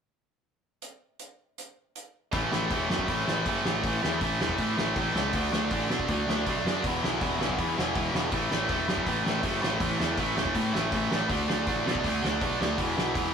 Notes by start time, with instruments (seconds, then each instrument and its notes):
0.82 closed hi-hat
1.19 closed hi-hat
1.58 closed hi-hat
1.95 closed hi-hat
2.32 picked electric bass A1, distorted electric guitar A2 E3 A3, kick, open hi-hat
2.52 picked electric bass A1, distorted electric guitar A2 E3 A3, snare
2.70 picked electric bass E1, distorted electric guitar A2 E3 A3, kick, open hi-hat
2.89 picked electric bass F#2, distorted electric guitar A2 E3 A3, snare
2.99 kick
3.08 picked electric bass A1, distorted electric guitar A2 E3 A3, kick, open hi-hat
3.26 picked electric bass A1, distorted electric guitar A2 E3 A3, snare
3.46 picked electric bass F#1, distorted electric guitar A2 E3 A3, kick, open hi-hat
3.64 picked electric bass A1, distorted electric guitar A2 E3 A3, snare
3.83 picked electric bass A1, distorted electric guitar A2 E3 A3, kick, open hi-hat
4.01 picked electric bass E2, distorted electric guitar A2 E3 A3, snare
4.21 picked electric bass A1, distorted electric guitar A2 E3 A3, kick, open hi-hat
4.40 picked electric bass E1, distorted electric guitar A2 E3 A3, snare
4.49 kick
4.58 picked electric bass A2, distorted electric guitar A2 E3 A3, kick, open hi-hat
4.77 picked electric bass A1, distorted electric guitar A2 E3 A3, snare
4.96 picked electric bass A1, distorted electric guitar A2 E3 A3, kick, open hi-hat
5.14 picked electric bass C#2, distorted electric guitar A2 E3 A3, snare
5.33 picked electric bass D2, distorted electric guitar D3 A3 D4, kick, open hi-hat
5.52 picked electric bass D2, distorted electric guitar D3 A3 D4, snare
5.71 picked electric bass A1, distorted electric guitar D3 A3 D4, kick, open hi-hat
5.89 picked electric bass B2, distorted electric guitar D3 A3 D4, snare
5.99 kick
6.08 picked electric bass D2, distorted electric guitar D3 A3 D4, kick, open hi-hat
6.27 picked electric bass D2, distorted electric guitar D3 A3 D4, snare
6.47 picked electric bass B1, distorted electric guitar D3 A3 D4, kick, open hi-hat
6.64 picked electric bass F#2, distorted electric guitar D3 A3 D4, snare
6.84 picked electric bass E1, distorted electric guitar E2 B2 E3, kick, open hi-hat
7.03 picked electric bass B1, distorted electric guitar E2 B2 E3, snare
7.21 picked electric bass E1, distorted electric guitar E2 B2 E3, kick, open hi-hat
7.39 picked electric bass B1, distorted electric guitar E2 B2 E3, snare
7.49 kick
7.59 distorted electric guitar E2 B2 E3, picked electric bass E2, kick, open hi-hat
7.77 picked electric bass E1, distorted electric guitar E2 B2 E3, snare
7.95 picked electric bass E1, distorted electric guitar E2 B2 E3, kick, open hi-hat
8.13 picked electric bass E1, distorted electric guitar E2 B2 E3, snare
8.32 picked electric bass A1, distorted electric guitar A2 E3 A3, kick, open hi-hat
8.50 picked electric bass A1, distorted electric guitar A2 E3 A3, snare
8.68 picked electric bass E1, distorted electric guitar A2 E3 A3, kick, open hi-hat
8.87 picked electric bass F#2, distorted electric guitar A2 E3 A3, snare
8.97 kick
9.06 picked electric bass A1, distorted electric guitar A2 E3 A3, kick, open hi-hat
9.24 picked electric bass A1, distorted electric guitar A2 E3 A3, snare
9.43 picked electric bass F#1, distorted electric guitar A2 E3 A3, kick, open hi-hat
9.60 picked electric bass A1, distorted electric guitar A2 E3 A3, snare
9.79 picked electric bass A1, distorted electric guitar A2 E3 A3, kick, open hi-hat
9.97 picked electric bass E2, distorted electric guitar A2 E3 A3, snare
10.17 picked electric bass A1, distorted electric guitar A2 E3 A3, kick, open hi-hat
10.35 picked electric bass E1, distorted electric guitar A2 E3 A3, snare
10.45 kick
10.54 distorted electric guitar A2 E3 A3, picked electric bass A2, kick, open hi-hat
10.73 picked electric bass A1, distorted electric guitar A2 E3 A3, snare
10.91 picked electric bass A1, distorted electric guitar A2 E3 A3, kick, open hi-hat
11.10 picked electric bass A1, distorted electric guitar A2 E3 A3, snare
11.28 picked electric bass D2, distorted electric guitar D3 A3 D4, kick, open hi-hat
11.47 picked electric bass D2, distorted electric guitar D3 A3 D4, snare
11.66 picked electric bass A1, distorted electric guitar D3 A3 D4, kick, open hi-hat
11.86 picked electric bass B2, distorted electric guitar D3 A3 D4, snare
11.95 kick
12.04 picked electric bass D2, distorted electric guitar D3 A3 D4, kick, open hi-hat
12.23 picked electric bass D2, distorted electric guitar D3 A3 D4, snare
12.41 picked electric bass B1, distorted electric guitar D3 A3 D4, kick, open hi-hat
12.60 picked electric bass D2, distorted electric guitar D3 A3 D4, snare
12.78 picked electric bass E1, distorted electric guitar E2 B2 E3, kick, open hi-hat
12.97 picked electric bass B1, distorted electric guitar E2 B2 E3, snare
13.15 picked electric bass E1, distorted electric guitar E2 B2 E3, kick, open hi-hat